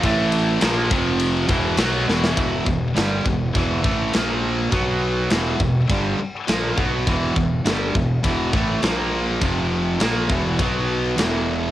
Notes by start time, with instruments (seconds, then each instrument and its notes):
0.03 fingered electric bass A1, distorted electric guitar A2 E3 A3, kick, ride
0.32 ride
0.61 fingered electric bass A#1, distorted electric guitar A#2 F3 A#3, snare, ride
0.90 fingered electric bass F1, distorted electric guitar F2 C3 F3, kick, ride
1.20 ride
1.49 fingered electric bass E1, distorted electric guitar E2 B2 E3, kick, ride
1.77 fingered electric bass B1, distorted electric guitar B2 F#3 B3, snare, ride
2.07 fingered electric bass E1, distorted electric guitar E2 B2 E3, snare
2.24 snare
2.37 fingered electric bass E1, distorted electric guitar E2 B2 E3, kick, ride bell
2.66 fingered electric bass E1, distorted electric guitar E2 B2, kick
2.96 fingered electric bass G1, distorted electric guitar G2 D3 G3, snare, ride bell
3.25 fingered electric bass E1, distorted electric guitar E2 B2, kick
3.55 fingered electric bass E1, distorted electric guitar E2 B2 E3, kick, ride bell
3.84 fingered electric bass A1, distorted electric guitar A2 E3 A3, kick
4.14 fingered electric bass A#1, distorted electric guitar A#2 F3 A#3, snare, ride bell
4.71 fingered electric bass B1, distorted electric guitar B2 F#3 B3, kick, ride bell
5.30 fingered electric bass E1, distorted electric guitar E2 B2 E3, snare, ride bell
5.59 fingered electric bass E1, distorted electric guitar E2 B2, kick
5.89 fingered electric bass G1, distorted electric guitar G2 D3 G3, kick, ride bell
6.19 muted fingered electric bass stroke, muted distorted electric guitar stroke
6.48 fingered electric bass A#1, distorted electric guitar A#2 F3 A#3, snare, ride bell
6.77 fingered electric bass B1, distorted electric guitar B2 F#3 B3, kick
7.07 fingered electric bass E1, distorted electric guitar E2 B2 E3, kick, ride bell
7.36 fingered electric bass E1, distorted electric guitar E2 B2, kick
7.65 fingered electric bass G1, distorted electric guitar G2 D3 G3, snare, ride bell
7.95 fingered electric bass E1, distorted electric guitar E2 B2, kick
8.23 fingered electric bass E1, distorted electric guitar E2 B2 E3, kick, ride bell
8.53 fingered electric bass A1, distorted electric guitar A2 E3 A3, kick
8.83 fingered electric bass A#1, distorted electric guitar A#2 F3 A#3, snare, ride bell
9.41 fingered electric bass F1, distorted electric guitar F2 C3 F3, kick, ride bell
10.00 fingered electric bass A#1, distorted electric guitar A#2 F3 A#3, snare, ride bell
10.30 fingered electric bass E1, distorted electric guitar E2 B2 E3, kick
10.59 fingered electric bass B1, distorted electric guitar B2 F#3 B3, kick, ride bell
11.17 fingered electric bass E1, distorted electric guitar E2 B2 E3, snare, ride bell